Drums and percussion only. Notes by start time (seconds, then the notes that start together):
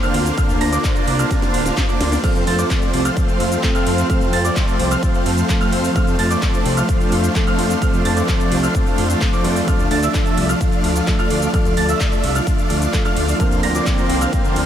0.03 closed hi-hat, shaker
0.14 open hi-hat, ride
0.26 closed hi-hat, shaker
0.38 kick, closed hi-hat, ride, shaker
0.49 closed hi-hat, shaker
0.61 open hi-hat, ride
0.73 closed hi-hat, shaker
0.84 kick, clap, closed hi-hat, ride, shaker
0.96 closed hi-hat, shaker
1.08 open hi-hat, ride
1.19 closed hi-hat, shaker
1.31 kick, snare, closed hi-hat, ride, shaker
1.42 snare, closed hi-hat, shaker
1.54 open hi-hat, ride
1.66 snare, closed hi-hat, shaker
1.77 kick, snare, clap, closed hi-hat, ride, shaker
1.89 closed hi-hat, shaker
2.01 snare, open hi-hat, ride
2.12 snare, open hi-hat, shaker
2.24 kick, closed hi-hat, crash, ride, shaker
2.35 closed hi-hat, shaker
2.47 open hi-hat, ride
2.59 closed hi-hat, shaker
2.70 kick, clap, closed hi-hat, ride, shaker
2.82 closed hi-hat, shaker
2.94 open hi-hat, ride
3.05 closed hi-hat, shaker
3.17 kick, closed hi-hat, ride, shaker
3.29 closed hi-hat, shaker
3.40 open hi-hat, ride
3.52 closed hi-hat, shaker
3.63 kick, clap, closed hi-hat, ride, shaker
3.75 closed hi-hat, shaker
3.87 open hi-hat, ride
3.98 closed hi-hat, shaker
4.10 kick, closed hi-hat, ride, shaker
4.21 closed hi-hat, shaker
4.33 open hi-hat, ride
4.45 closed hi-hat, shaker
4.56 kick, clap, closed hi-hat, ride, shaker
4.68 closed hi-hat, shaker
4.79 open hi-hat, ride
4.91 closed hi-hat, shaker
5.03 kick, closed hi-hat, ride, shaker
5.14 closed hi-hat, shaker
5.26 open hi-hat, ride
5.38 closed hi-hat, shaker
5.49 kick, clap, closed hi-hat, ride, shaker
5.61 closed hi-hat, shaker
5.72 open hi-hat, ride
5.84 open hi-hat, shaker
5.96 kick, closed hi-hat, ride, shaker
6.07 closed hi-hat, shaker
6.19 open hi-hat, ride
6.31 closed hi-hat, shaker
6.42 kick, clap, closed hi-hat, ride, shaker
6.54 closed hi-hat, shaker
6.65 open hi-hat, ride
6.77 closed hi-hat, shaker
6.89 kick, closed hi-hat, ride, shaker
7.00 closed hi-hat, shaker
7.12 open hi-hat, ride
7.24 closed hi-hat, shaker
7.35 kick, clap, closed hi-hat, ride, shaker
7.47 closed hi-hat, shaker
7.59 open hi-hat, ride
7.70 closed hi-hat, shaker
7.82 kick, closed hi-hat, ride, shaker
7.94 closed hi-hat, shaker
8.05 open hi-hat, ride
8.17 closed hi-hat, shaker
8.28 kick, clap, closed hi-hat, ride, shaker
8.40 closed hi-hat, shaker
8.52 open hi-hat, ride
8.63 closed hi-hat, shaker
8.75 kick, closed hi-hat, ride, shaker
8.87 closed hi-hat, shaker
8.98 open hi-hat, ride
9.10 closed hi-hat, shaker
9.21 kick, clap, closed hi-hat, ride, shaker
9.33 closed hi-hat, shaker
9.44 open hi-hat, ride
9.56 open hi-hat, shaker
9.68 kick, closed hi-hat, ride, shaker
9.79 closed hi-hat, shaker
9.91 open hi-hat, ride
10.03 closed hi-hat, shaker
10.14 kick, clap, closed hi-hat, ride, shaker
10.26 closed hi-hat, shaker
10.38 open hi-hat, ride
10.49 closed hi-hat, shaker
10.61 kick, closed hi-hat, ride, shaker
10.72 closed hi-hat, shaker
10.84 open hi-hat, ride
10.96 closed hi-hat, shaker
11.07 kick, clap, closed hi-hat, ride, shaker
11.19 closed hi-hat, shaker
11.30 open hi-hat, ride
11.42 closed hi-hat, shaker
11.54 kick, closed hi-hat, ride, shaker
11.65 closed hi-hat, shaker
11.77 open hi-hat, ride
11.89 closed hi-hat, shaker
12.00 kick, clap, closed hi-hat, ride, shaker
12.12 closed hi-hat, shaker
12.24 open hi-hat, ride
12.35 closed hi-hat, shaker
12.47 kick, closed hi-hat, ride, shaker
12.58 closed hi-hat, shaker
12.70 open hi-hat, ride
12.82 closed hi-hat, shaker
12.93 kick, clap, closed hi-hat, ride, shaker
13.05 closed hi-hat, shaker
13.17 open hi-hat, ride
13.28 open hi-hat, shaker
13.40 kick, closed hi-hat, ride, shaker
13.51 closed hi-hat, shaker
13.63 open hi-hat, ride
13.75 closed hi-hat, shaker
13.86 kick, clap, closed hi-hat, ride, shaker
13.98 closed hi-hat, shaker
14.10 open hi-hat, ride
14.21 closed hi-hat, shaker
14.33 kick, closed hi-hat, ride, shaker
14.45 closed hi-hat, shaker
14.56 open hi-hat, ride